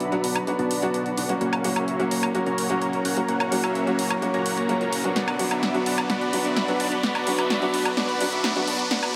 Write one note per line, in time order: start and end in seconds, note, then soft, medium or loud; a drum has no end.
0.00 0.10 B1 medium
0.00 0.21 B3 medium
0.00 0.21 D4 medium
0.00 0.21 F#4 medium
0.00 5.12 F#4 medium
0.00 1.37 B4 medium
0.00 0.21 D5 medium
0.00 1.37 D5 medium
0.00 0.21 E5 medium
0.00 1.37 B5 medium
0.00 closed hi-hat medium
0.00 riser medium
0.11 0.44 F#3 medium
0.11 0.44 B3 medium
0.11 0.45 D4 medium
0.11 0.45 F#4 medium
0.11 closed hi-hat soft
0.24 0.43 B1 medium
0.24 0.38 B3 medium
0.24 0.38 D4 medium
0.24 0.38 F#4 medium
0.24 0.38 D5 medium
0.24 0.38 A5 medium
0.24 open hi-hat loud
0.36 closed hi-hat medium
0.36 high woodblock medium
0.47 0.66 B1 medium
0.47 0.79 F#3 medium
0.47 0.79 B3 medium
0.47 0.80 D4 medium
0.47 0.80 F#4 medium
0.47 closed hi-hat soft
0.59 0.91 B3 loud
0.59 0.91 D4 medium
0.59 0.91 F#4 medium
0.59 0.91 D5 medium
0.59 0.91 A5 loud
0.59 closed hi-hat soft
0.71 0.90 B1 medium
0.71 open hi-hat loud
0.82 1.26 F#3 medium
0.82 1.26 B3 medium
0.82 1.27 D4 medium
0.82 1.27 F#4 medium
0.82 closed hi-hat medium
0.94 1.13 B1 loud
0.94 1.09 B3 medium
0.94 1.09 D4 medium
0.94 1.09 F#4 medium
0.94 1.09 D5 medium
0.94 1.09 A5 medium
0.94 closed hi-hat medium
1.06 closed hi-hat soft
1.18 1.27 B1 loud
1.18 1.32 B3 medium
1.18 1.32 D4 medium
1.18 1.32 F#4 medium
1.18 1.32 D5 medium
1.18 1.32 F#5 medium
1.18 open hi-hat loud
1.29 1.61 F#3 medium
1.29 1.62 A#3 medium
1.29 1.62 C#4 medium
1.29 1.62 F#4 medium
1.29 closed hi-hat medium
1.41 1.60 F#1 loud
1.41 1.73 A#3 medium
1.41 1.73 C#4 medium
1.41 1.73 F#4 medium
1.41 5.12 A#4 medium
1.41 1.73 C#5 medium
1.41 5.12 C#5 medium
1.41 1.73 F#5 loud
1.41 5.12 A#5 medium
1.41 closed hi-hat medium
1.53 closed hi-hat soft
1.53 high woodblock medium
1.64 1.83 F#1 loud
1.64 1.96 F#3 medium
1.64 1.97 A#3 medium
1.64 1.97 C#4 medium
1.64 1.97 F#4 medium
1.64 open hi-hat loud
1.76 2.09 A#3 medium
1.76 2.08 C#4 medium
1.76 2.09 F#4 medium
1.76 2.08 C#5 medium
1.76 2.08 E5 medium
1.76 closed hi-hat medium
1.76 high woodblock medium
1.88 1.97 F#1 medium
1.88 closed hi-hat soft
1.99 2.32 F#3 medium
1.99 2.32 A#3 medium
1.99 2.32 C#4 medium
1.99 2.32 F#4 medium
1.99 closed hi-hat soft
2.11 2.30 F#1 medium
2.11 2.26 A#3 medium
2.11 2.26 C#4 medium
2.11 2.26 F#4 medium
2.11 2.26 C#5 medium
2.11 2.26 A#5 medium
2.11 open hi-hat loud
2.23 closed hi-hat medium
2.23 high woodblock medium
2.34 2.53 F#1 medium
2.34 2.67 F#3 medium
2.34 2.67 A#3 medium
2.34 2.67 C#4 medium
2.34 2.67 F#4 medium
2.34 closed hi-hat medium
2.46 2.79 A#3 medium
2.46 2.79 C#4 medium
2.46 2.79 F#4 medium
2.46 2.79 C#5 medium
2.46 2.79 A#5 loud
2.46 closed hi-hat soft
2.58 2.77 F#1 medium
2.58 open hi-hat loud
2.69 3.14 F#3 medium
2.69 3.14 A#3 medium
2.69 3.14 C#4 medium
2.69 3.14 F#4 medium
2.69 closed hi-hat medium
2.82 3.00 F#1 loud
2.82 2.96 A#3 medium
2.82 2.96 C#4 medium
2.82 2.96 F#4 medium
2.82 2.96 C#5 medium
2.82 2.96 A#5 medium
2.82 closed hi-hat soft
2.93 closed hi-hat soft
3.05 3.14 F#1 loud
3.05 3.20 A#3 medium
3.05 3.20 C#4 medium
3.05 3.20 F#4 medium
3.05 3.20 C#5 medium
3.05 3.20 F#5 medium
3.05 open hi-hat loud
3.16 3.49 F#3 medium
3.16 3.49 A#3 medium
3.16 3.49 C#4 medium
3.16 3.49 F#4 medium
3.16 closed hi-hat medium
3.28 3.47 F#1 loud
3.28 3.61 A#3 medium
3.28 3.61 C#4 medium
3.28 3.61 F#4 medium
3.28 3.61 C#5 medium
3.28 3.61 F#5 loud
3.28 closed hi-hat soft
3.40 closed hi-hat soft
3.40 high woodblock medium
3.51 3.71 F#1 loud
3.51 3.84 F#3 medium
3.51 3.84 A#3 medium
3.51 3.84 C#4 medium
3.51 3.84 F#4 medium
3.51 open hi-hat loud
3.64 3.96 A#3 medium
3.64 3.96 C#4 medium
3.64 3.96 F#4 medium
3.64 3.96 C#5 medium
3.64 3.96 E5 medium
3.64 closed hi-hat soft
3.64 high woodblock medium
3.75 3.85 F#1 medium
3.75 closed hi-hat soft
3.86 4.19 F#3 medium
3.86 4.19 A#3 medium
3.86 4.19 C#4 medium
3.86 4.20 F#4 medium
3.86 closed hi-hat soft
3.99 4.18 F#1 medium
3.99 4.13 A#3 medium
3.99 4.13 C#4 medium
3.99 4.13 F#4 medium
3.99 4.13 C#5 medium
3.99 4.13 A#5 medium
3.99 open hi-hat loud
4.10 closed hi-hat medium
4.10 high woodblock medium
4.22 4.41 C#2 medium
4.22 4.54 F#3 medium
4.22 4.54 A#3 medium
4.22 4.55 C#4 medium
4.22 4.55 F#4 medium
4.22 closed hi-hat soft
4.34 4.43 A#3 medium
4.34 4.43 C#4 medium
4.34 4.43 F#4 medium
4.34 4.43 C#5 medium
4.34 4.43 A#5 loud
4.34 closed hi-hat soft
4.46 4.55 F#1 medium
4.46 4.56 A#3 medium
4.46 4.56 C#4 medium
4.46 4.56 F#4 medium
4.46 4.56 C#5 medium
4.46 4.56 F#5 medium
4.46 open hi-hat loud
4.57 4.78 A#3 medium
4.57 4.78 C#4 medium
4.57 4.78 F#4 medium
4.57 4.78 C#5 medium
4.57 4.78 A#5 loud
4.57 closed hi-hat medium
4.68 4.88 C#2 loud
4.68 4.80 F#3 medium
4.68 4.81 A#3 medium
4.68 4.81 C#4 medium
4.68 4.81 F#4 medium
4.68 closed hi-hat soft
4.81 5.13 A#3 loud
4.81 5.13 C#4 medium
4.81 5.13 F#4 medium
4.81 5.13 C#5 medium
4.81 5.13 A#5 loud
4.81 closed hi-hat soft
4.93 5.11 F#1 loud
4.93 open hi-hat loud
5.04 5.16 F#3 medium
5.04 5.16 B3 medium
5.04 5.16 D4 medium
5.04 5.16 F#4 medium
5.04 closed hi-hat medium
5.16 5.35 B1 loud
5.16 5.48 B3 medium
5.16 5.48 D4 medium
5.16 8.87 F#4 medium
5.16 5.48 F#4 medium
5.16 9.16 B4 medium
5.16 8.87 D5 medium
5.16 5.48 D5 medium
5.16 5.48 F#5 medium
5.16 9.16 B5 medium
5.16 snare soft
5.16 closed hi-hat medium
5.28 closed hi-hat soft
5.28 high woodblock medium
5.39 5.58 B1 loud
5.39 5.71 F#3 medium
5.39 5.72 B3 medium
5.39 5.72 D4 medium
5.39 5.72 F#4 medium
5.39 open hi-hat loud
5.51 5.83 B3 medium
5.51 5.83 D4 medium
5.51 5.83 F#4 medium
5.51 5.83 D5 medium
5.51 5.83 E5 medium
5.51 closed hi-hat medium
5.51 high woodblock medium
5.63 5.72 B1 medium
5.63 snare soft
5.63 closed hi-hat soft
5.74 6.07 F#3 medium
5.74 6.07 B3 medium
5.74 6.07 D4 medium
5.74 6.07 F#4 medium
5.74 closed hi-hat soft
5.86 6.05 B1 medium
5.86 6.01 B3 medium
5.86 6.01 D4 medium
5.86 6.01 F#4 medium
5.86 6.01 D5 medium
5.86 6.01 A5 medium
5.86 open hi-hat loud
5.98 closed hi-hat medium
5.98 high woodblock medium
6.10 6.29 B1 medium
6.10 6.42 B3 medium
6.10 6.42 D4 medium
6.10 6.42 F#4 medium
6.10 6.42 D5 medium
6.10 6.42 F#5 loud
6.10 snare medium
6.10 closed hi-hat soft
6.21 closed hi-hat soft
6.33 6.52 B1 medium
6.33 6.65 F#3 medium
6.33 6.65 B3 medium
6.33 6.66 D4 medium
6.33 6.66 F#4 medium
6.33 open hi-hat loud
6.45 6.77 B3 medium
6.45 6.77 D4 medium
6.45 6.77 F#4 medium
6.45 6.77 D5 medium
6.45 6.77 E5 medium
6.45 closed hi-hat medium
6.57 6.75 B1 loud
6.57 snare medium
6.57 closed hi-hat soft
6.68 7.00 F#3 medium
6.68 7.01 B3 medium
6.68 7.01 D4 medium
6.68 7.01 F#4 medium
6.68 closed hi-hat soft
6.80 6.89 B1 loud
6.80 6.95 B3 medium
6.80 6.95 D4 medium
6.80 6.95 F#4 medium
6.80 6.95 D5 medium
6.80 6.95 A5 medium
6.80 open hi-hat loud
6.92 closed hi-hat medium
7.03 7.22 B1 loud
7.03 7.36 B3 medium
7.03 7.36 D4 medium
7.03 7.36 F#4 medium
7.03 7.36 D5 medium
7.03 7.36 F#5 loud
7.03 snare medium
7.03 closed hi-hat medium
7.15 closed hi-hat soft
7.15 high woodblock medium
7.26 7.46 B1 loud
7.26 7.59 F#3 medium
7.26 7.59 B3 medium
7.26 7.59 D4 medium
7.26 7.60 F#4 medium
7.26 open hi-hat loud
7.39 7.71 B3 medium
7.39 7.71 D4 medium
7.39 7.71 F#4 medium
7.39 7.71 D5 medium
7.39 7.71 E5 medium
7.39 closed hi-hat medium
7.39 high woodblock medium
7.50 7.60 B1 medium
7.50 snare medium
7.50 closed hi-hat soft
7.61 7.94 F#3 medium
7.61 7.94 B3 medium
7.61 7.94 D4 medium
7.61 7.95 F#4 medium
7.61 closed hi-hat soft
7.74 7.93 B1 medium
7.74 7.88 B3 medium
7.74 7.88 D4 medium
7.74 7.88 F#4 medium
7.74 7.88 D5 medium
7.74 7.88 A5 medium
7.74 open hi-hat loud
7.85 closed hi-hat medium
7.85 high woodblock medium
7.97 8.16 B1 medium
7.97 8.30 B3 medium
7.97 8.30 D4 medium
7.97 8.30 F#4 medium
7.97 8.30 D5 medium
7.97 8.30 F#5 loud
7.97 snare medium
7.97 closed hi-hat medium
8.09 closed hi-hat soft
8.20 8.39 B1 medium
8.20 8.53 F#3 medium
8.20 8.53 B3 medium
8.20 8.53 D4 medium
8.20 8.53 F#4 medium
8.20 open hi-hat loud
8.32 8.65 B3 medium
8.32 8.65 D4 medium
8.32 8.65 F#4 medium
8.32 8.65 D5 medium
8.32 8.65 E5 medium
8.32 closed hi-hat medium
8.44 8.63 B1 loud
8.44 snare medium
8.44 closed hi-hat medium
8.55 8.88 F#3 medium
8.55 8.88 B3 medium
8.55 8.88 D4 medium
8.55 8.88 F#4 medium
8.55 closed hi-hat soft
8.67 8.77 B1 loud
8.67 8.82 B3 medium
8.67 8.82 D4 medium
8.67 8.82 F#4 medium
8.67 8.82 D5 medium
8.67 8.82 A5 loud
8.67 open hi-hat loud
8.79 closed hi-hat medium
8.91 9.10 E1 loud
8.91 9.16 G3 medium
8.91 9.16 B3 medium
8.91 9.16 D4 medium
8.91 9.16 F#4 medium
8.91 9.16 D5 medium
8.91 9.16 E5 medium
8.91 9.16 F#5 loud
8.91 snare medium
8.91 closed hi-hat medium
9.03 closed hi-hat soft
9.03 high woodblock medium